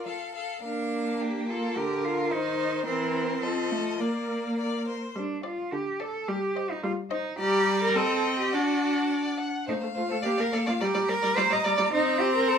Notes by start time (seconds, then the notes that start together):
0.06 F3 A4 F5
0.35 A4 F5
0.62 A#3 D4 A#4 F5
1.20 G4 A#4
1.49 F4 A4
1.77 D3 G4 A#4
2.04 F4
2.31 D#3 D#4 C5
2.86 E3 C4 A#4 C5
3.14 C5
3.42 F3 A4 D#5
3.71 A3
4.00 A#3 A#4 D5
4.58 D5
4.88 C5
5.16 G3 D4
5.43 F4 D5
5.73 D3 G4
6.00 A4 D5
6.28 G3 G4
6.56 C5 D#5
6.71 D#4
6.84 G3 F4
7.11 D#4 C5 D#5
7.39 G3 G4 D5 A#5
7.83 A#4
7.96 C4 A4 D#5 G5
8.40 G4
8.52 D4 F#4 D5 F#5
9.11 D5
9.38 F#5
9.67 A3 D#4 C5 F5
9.81 A3 C5
9.95 A3 F4 C5
10.08 A3 A4 C5
10.22 A#3 G4 D5
10.37 A#3 A#4 D5
10.52 A#3 A4 D5
10.66 A#3 F4 D5
10.80 G3 G4 D5 A#5
10.94 G3 D5
11.09 G3 A#4 D5
11.22 G3 D5
11.37 G3 C5 D5
11.50 G3 D5 D#5
11.64 G3 D5
11.78 G3 D5
11.91 C4 D#4 C5 A#5
12.20 G4
12.36 A#4
12.48 A4